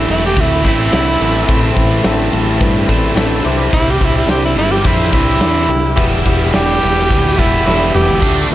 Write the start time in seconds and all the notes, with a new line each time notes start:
Already playing: A2 E3 A3 C4 E4 A4
0.08 E1 C4 E4 A4, ride, shaker
0.26 G4
0.36 D2 C4 E4 A4, kick, ride, shaker
0.41 E4
0.63 A1 A2 E3 A3 C4 E4 A4, kick, snare, ride, shaker
0.68 E4
0.91 C2 A2 E3 A3 C4 E4 A4, snare, ride, shaker
1.20 A1 C4 E4 A4, ride
1.47 A1 A2 E3 A3 C4 E4 A4, kick, ride, shaker
1.74 A1 C4 E4 B4, kick, ride, shaker
2.04 A1 C4 E4 A4, snare, ride, shaker
2.32 A1 C4 E4 A4, ride, shaker
2.60 G2 C4 E4 B4, kick, ride, shaker
2.87 A1 A2 E3 A3 C4 E4 A4 D5, kick, ride
3.15 A1 A2 E3 A3 C4 E4 A4 E5, snare, ride, shaker
3.43 C2 C3 E3 G3 C4 D4 E4 G4 C5 A5, ride, shaker
3.73 C2 E4, kick, ride, shaker
3.91 G4
4.00 C2 D4 E4 C5, kick, ride, shaker
4.05 E4
4.18 E4
4.27 C2 D4 E4 G4 C5, snare, ride, shaker
4.45 E4
4.55 G1 D4 E4 A4, ride, shaker
4.71 G4
4.83 F2 C3 E3 G3 C4 D4 E4 C5, kick, ride, shaker
5.12 C2 C3 E3 G3 C4 D4 E4 C5, kick, snare, ride, shaker
5.40 E2 D4 E4 D5, snare, ride, shaker
5.68 C2 D4 E4 G4, ride, shaker
5.96 E1 E2 B2 E3 G3 B3 E4 G4 B4, kick, ride, shaker
6.25 E1 E4 G4 B4, kick, ride, shaker
6.40 shaker
6.54 E1 E4 G4 D5, snare, ride, shaker
6.80 E1 E4 G4 B4, ride, shaker
6.97 shaker
7.09 D2 E4 G4 B4, kick, ride, shaker
7.36 E1 E2 B2 E3 G3 B3 E4 G4 B4, kick, snare, ride, shaker
7.53 shaker
7.65 E1 E2 B2 E3 G3 B3 E4 G4 A4, snare, shaker
7.94 E1 E4 G4 B4, mid tom, shaker
8.09 floor tom, shaker
8.21 D2 D3 A3 D4 F4 A4, kick, crash, shaker
8.25 F3 A4
8.38 shaker
8.49 D2 D3 A3 D4, open hi-hat